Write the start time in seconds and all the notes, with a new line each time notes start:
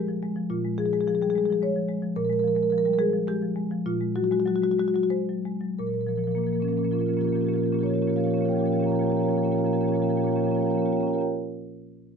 Already playing: A#2 G#3 G4
0.08 F3
0.23 G#3
0.36 F3
0.50 A#2 F4
0.65 G#3
0.78 F3 G#4
0.86 G#4
0.93 G#3 G#4
1.00 G#4
1.07 F3 G#4
1.15 G#4
1.22 G3 G#4
1.30 G#4
1.35 G#3 G#4
1.46 G#4
1.50 F3 G#4
1.62 G#3 C#5
1.76 F3
1.88 G#3
2.02 F3
2.16 A#2 A#4
2.25 A#4
2.30 G#3 A#4
2.39 A#4
2.44 F3 A#4
2.55 G#3 A#4
2.63 A#4
2.70 F3 A#4
2.78 A#4
2.85 G3 A#4
2.94 A#4
2.98 G#3 G#4
3.13 F3
3.28 G#3 G4
3.43 F3
3.56 G#3
3.71 F3
3.86 A#2 F4
4.01 G#3
4.16 F#3 F#4
4.24 F#4
4.31 G#3 F#4
4.40 F#4
4.46 F#3 F#4
4.56 F#4
4.62 G#3 F#4
4.71 F#4
4.78 G#3 F#4
4.88 F#4
4.94 F#3 F#4
5.03 F#4
5.10 G#3 C5
5.29 F#3
5.46 G#3
5.61 F#3
5.79 A#2 A#4
5.87 A#2 A#4
5.94 A#4
5.99 A#2 A#4
6.07 A#2 F3 A#4
6.16 A#2 F3 A#4
6.24 F3 A#4
6.28 A#2 A#4
6.35 A#2 F3 A#3 A#4
6.43 F3 A#3 A#4
6.49 A#2 A#3
6.54 F3 A#4
6.59 A#2 A#3 C#4 A#4
6.64 F3 A#3
6.68 A#2 C#4 A#4
6.73 F3 A#3
6.78 A#2 C#4 A#4
6.83 F3 A#3 C#4 A#4
6.87 A#2 F4
6.92 A#2 F3 A#3 C#4 A#4
6.99 F3 A#3 C#4 F4 A#4
7.04 A#2 F4 A#4
7.08 F3 A#3 C#4
7.14 A#2 A#3 C#4 F4 A#4
7.19 F3 F4 G4 A#4
7.24 A#2 F3 A#3 C#4
7.28 F4 G4 A#4
7.32 A#2 F3 A#3 C#4 F4 G4
7.36 A#3 A#4
7.41 A#2 C#4 F4 G4 A#4
7.46 F3 A#3 C#4 F4 G4
7.52 A#2 F3 C#4 F4 G4 A#4
7.57 A#3 G4 A#4
7.63 A#2 F3 A#3 C#4 F4 A#4
7.67 F4 G4
7.72 A#2 F3 A#3 C#4 G4 A#4
7.79 F3 C#4 F4 G4 A#4
7.83 A#2 A#3 C#4 F4 C#5
7.88 F3 A#3 G4 A#4 C#5
7.92 A#2 C#4 F4 G4 A#4
7.98 F3 A#3 C#4 F4 G4 C#5
8.03 A#2 A#4 C#5
8.07 F3 A#3 C#4 F4 G4 A#4
8.13 A#2 A#3 F4 G4 C#5 F5
8.17 F3 C#4 A#4 C#5
8.23 A#2 A#3 C#4 F4 G4 A#4 F5
8.27 F3 F4 G4 A#4 C#5
8.32 A#2 A#3 C#4 C#5 F5
8.37 F3 F4 G4 A#4 F5
8.41 A#2 A#3 C#4 G4 A#4 C#5
8.45 F3 A#3 C#4 F4 F5 G5
8.50 A#2 F4 G4 A#4 C#5
8.55 F3 A#3 C#4 C#5 F5 G5
8.59 A#2 F4 G4 A#4 F5 G5
8.64 F3 A#3 C#4 G4 A#4 C#5
8.68 A#2 C#4 F4 F5 G5
8.72 F3 A#3 F4 G4 A#4 C#5 F5
8.78 A#2 C#4 G4 A#4 C#5 G5
8.82 F3 A#3 F4 F5 G5 A#5
8.87 A#2 A#3 C#4 G4 A#4 C#5 F5
8.91 F3 C#4 F4 G4 G5 A#5
8.96 A#3 F4 A#4 C#5 F5 G5 A#5
9.00 A#2 F3 C#4 G4 A#4 C#5 F5
9.05 A#2 A#3 F4 G5 A#5
9.09 F3 C#4 G4 A#4 C#5 F5 A#5
9.14 A#3 F4 G4 A#4 F5 G5
9.18 A#2 F3 C#4 F4 C#5 G5 A#5
9.23 A#3 G4 A#4 C#5 F5 G5 A#5
9.27 A#2 F3 C#4 F4 G4 A#4 F5 A#5
9.33 A#3 C#4 F4 C#5 G5
9.37 A#2 F3 G4 A#4 F5 G5 A#5
9.41 A#3 C#4 F4 G4 A#4 C#5 F5 A#5
9.46 A#2 F3 C#5 G5
9.50 A#3 C#4 F4 G4 A#4 F5 G5 A#5
9.54 A#2 F3 A#3 F4 C#5 F5 A#5
9.59 C#4 G4 A#4 G5
9.63 A#2 F3 A#3 C#4 F4 G4 A#4 C#5 F5 A#5
9.68 C#5 F5 G5 A#5
9.73 A#2 F3 A#3 C#4 F4 G4 A#4 G5
9.77 C#4 F4 G4 A#4 C#5 F5 G5 A#5
9.83 A#2 F3 A#3 C#5 F5 A#5
9.87 C#4 F4 G4 A#4 G5
9.91 A#2 F3 A#3 G4 C#5 F5 G5 A#5
9.95 C#4 F4 A#4 A#5
10.00 F3 A#3 F4 G4 A#4 C#5 F5 G5
10.04 A#2 C#4 F5 A#5
10.08 F3 A#3 C#4 F4 G4 A#4 C#5 G5
10.12 A#2 G4 F5 G5 A#5
10.17 F3 A#3 C#4 F4 A#4 C#5 F5 A#5
10.22 A#2 F4 G4 A#4 C#5 F5 G5
10.26 F3 A#3 C#4 G4 G5 A#5
10.31 A#2 F4 A#4 C#5 F5 A#5
10.36 F3 A#3 C#4 G4 A#4 C#5 G5
10.40 F4 G4 F5 A#5
10.44 A#2 F3 A#3 C#4 A#4 C#5 F5 G5 A#5
10.49 A#3 C#4 F4 G4 A#4 G5
10.53 F3 F4 G4 C#5 F5 A#5
10.58 A#3 C#4 A#4 F5 G5 A#5
10.62 F3 F4 G4 A#4 C#5 G5
10.67 A#3 C#4 F4 C#5 F5 G5 A#5
10.71 F3 C#4 G4 A#4 F5 A#5
10.77 A#3 F4 G4 A#4 C#5 G5 A#5
10.82 A#3 C#4 F4 G4 C#5 F5 G5
10.86 C#4 A#4 F5 A#5
10.90 A#3 F4 G4 A#4 C#5 G5 A#5
10.95 C#4 F5 G5
11.00 A#3 C#4 F4 G4 A#4 C#5 F5 G5 A#5
11.07 F4 G4 A#4 C#5 F5 G5 A#5
11.11 C#4 F4 G4 A#4 C#5 A#5
11.15 C#4 F5 G5
11.19 F4 G4 A#4 C#5 G5 A#5
11.24 F5